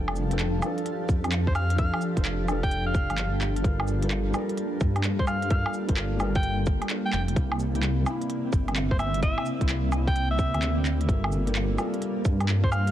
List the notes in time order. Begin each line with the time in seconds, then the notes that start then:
Already playing: F1 F3 D4 A4 F5 A5
0.08 low woodblock
0.13 G4, cabasa
0.29 F3 D4, closed hi-hat
0.33 A4
0.39 clap, closed hi-hat
0.58 F3 D4
0.62 A4, cabasa, low woodblock
0.78 closed hi-hat
0.86 closed hi-hat
1.09 F2, kick, cabasa
1.24 closed hi-hat, low woodblock
1.32 clap, closed hi-hat
1.47 C5, kick
1.55 F5, cabasa, low woodblock
1.70 closed hi-hat
1.76 F3 D4 A4 F5, kick, closed hi-hat
1.94 low woodblock
2.01 cabasa
2.15 F1 F3 D4 A4, kick, closed hi-hat
2.25 clap, closed hi-hat
2.44 F3 D4
2.48 A4, cabasa, low woodblock
2.63 G5, kick, closed hi-hat
2.71 closed hi-hat
2.87 F5
2.95 kick, cabasa
3.10 G1, closed hi-hat, low woodblock
3.18 clap, closed hi-hat
3.41 clap, cabasa
3.56 closed hi-hat
3.62 G1 G3 F4 A4, kick, closed hi-hat
3.66 A#4
3.80 A#3, low woodblock
3.88 cabasa
4.01 G3 F4 A4 A#4, closed hi-hat
4.11 clap, closed hi-hat
4.30 G3 F4, cabasa, low woodblock
4.36 A4 A#4
4.49 closed hi-hat
4.57 closed hi-hat
4.81 G2, kick, cabasa
4.96 closed hi-hat, low woodblock
5.04 clap, closed hi-hat
5.19 C5, kick
5.27 F5, cabasa, low woodblock
5.42 closed hi-hat
5.49 G3 F4 A4 A#4 F5, kick, closed hi-hat
5.66 low woodblock
5.74 cabasa
5.87 G1 G3 F4 A4 A#4, kick, closed hi-hat
5.97 clap, closed hi-hat
6.16 G3 F4, cabasa, low woodblock
6.22 A4 A#4
6.35 G5, kick, closed hi-hat
6.43 closed hi-hat
6.66 kick, cabasa
6.82 closed hi-hat, low woodblock
6.90 clap, closed hi-hat
7.05 G5
7.13 F1 G5, clap, cabasa
7.28 closed hi-hat
7.34 C2 C3 A#3 E4, kick, closed hi-hat
7.50 D5, low woodblock
7.60 cabasa
7.68 C4
7.73 C3 A#3, closed hi-hat
7.77 E4
7.82 E5, clap, closed hi-hat
8.02 C3 A#3, cabasa, low woodblock
8.10 E4
8.21 closed hi-hat
8.30 closed hi-hat
8.53 G1, kick, cabasa
8.68 closed hi-hat, low woodblock
8.76 clap, closed hi-hat
8.91 C5, kick
8.99 E5, cabasa, low woodblock
9.14 closed hi-hat
9.21 C3 A#3 E4 E5, kick, closed hi-hat
9.38 low woodblock
9.46 cabasa
9.59 C2 C3 A#3 E4, kick, closed hi-hat
9.69 clap, closed hi-hat
9.89 C3 A#3, cabasa, low woodblock
9.97 E4
10.07 G5, kick, closed hi-hat
10.16 closed hi-hat
10.31 E5
10.39 kick, cabasa
10.54 D2, closed hi-hat, low woodblock
10.62 clap, closed hi-hat
10.86 clap, cabasa
11.01 closed hi-hat
11.07 G1 G3 F4 A4, kick, closed hi-hat
11.11 A#4
11.24 low woodblock
11.32 D4 F5, cabasa
11.45 G3 F4 A4 A#4, closed hi-hat
11.54 A5, clap, closed hi-hat
11.75 G3 F4, cabasa, low woodblock
11.80 A4 A#4
11.94 closed hi-hat
12.02 closed hi-hat
12.25 G2, kick, cabasa
12.41 closed hi-hat, low woodblock
12.49 clap, closed hi-hat
12.64 C5, kick
12.72 F5, cabasa, low woodblock
12.87 closed hi-hat